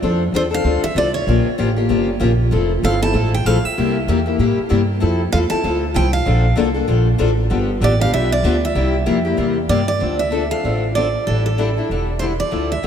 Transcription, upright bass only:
0.02 F2
0.32 E2
0.64 D2
0.83 muted upright bass stroke
0.95 C2
1.27 A#1
1.58 A1
1.89 G1
2.20 A#1
2.52 F1
2.82 G1
3.14 A1
3.44 A#1
3.63 muted upright bass stroke
3.78 C2
4.07 E2
4.38 A2
4.58 muted upright bass stroke
4.71 G2
5.02 F2
5.33 E2
5.51 muted upright bass stroke
5.63 D2
5.95 C2
6.26 A#1
6.58 C2
6.88 A#1
7.19 A1
7.50 G1
7.80 A1
8.12 B1
8.43 D2
8.75 C2
9.06 F2
9.37 E2
9.68 G2
10.01 D2
10.63 A1
11.27 A1
11.89 E1
12.52 D2
12.83 D2

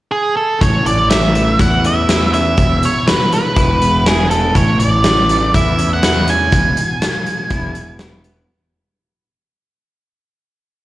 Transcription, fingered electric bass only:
0.61 A1
0.85 A1
1.60 E2
2.58 E1
3.56 E1
4.55 A1
4.79 A1
5.54 E2
6.52 E1
7.50 E1

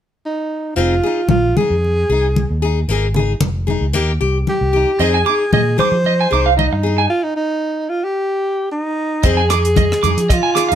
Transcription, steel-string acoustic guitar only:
0.76 C4 D#4 G#4
1.03 D#4 G#4
1.57 D#4 G#4
2.10 D#4 G#4
2.62 D#4 G#4
2.89 A#3 D#4 G#4
3.16 D#4 G#4
3.67 D#4 G#4
3.93 A#3 D#4 G4
4.21 G4
4.73 D#4 G4
4.99 C4 D#4 G#4
5.26 D#4 G#4
5.78 D#4 G#4
6.31 D#4 G#4
6.83 D#4 G#4
9.24 C4 D#4 G#4
9.50 D#4 G#4
10.04 D#4 G#4
10.55 D#4 G#4

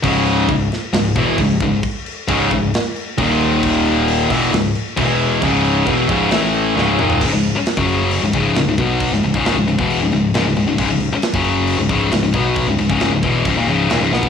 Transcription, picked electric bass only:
0.04 C#1
0.48 C#1
0.94 C#1
1.15 E1
1.38 C#1
1.60 C#1
2.28 C#1
2.51 C#1
3.18 D#1
4.30 E1
4.52 C#1
4.97 E1
5.42 C#1
5.87 E1
6.09 C#1
6.32 A1
6.76 C#1
6.99 D#1
7.21 C#1
7.32 C#1
7.54 muted picked electric bass stroke
7.77 F#1
8.21 C#1
8.34 C#1
8.55 C#1
8.66 C#1
8.78 B1
9.12 C#1
9.22 C#1
9.34 C#1
9.56 C#1
9.67 C#1
9.79 E1
10.01 C#1
10.12 C#1
10.34 C#1
10.45 C#1
10.57 C#1
10.69 C#1
10.78 C#1
10.90 C#1
11.13 muted picked electric bass stroke
11.33 F#1
11.78 C#1
11.90 C#1
12.11 C#1
12.23 C#1
12.34 B1
12.67 C#1
12.79 C#1
12.89 C#1
13.12 C#1
13.45 C#1
13.56 D#1
13.67 C#1
13.89 D#1
14.00 C#1
14.11 B1

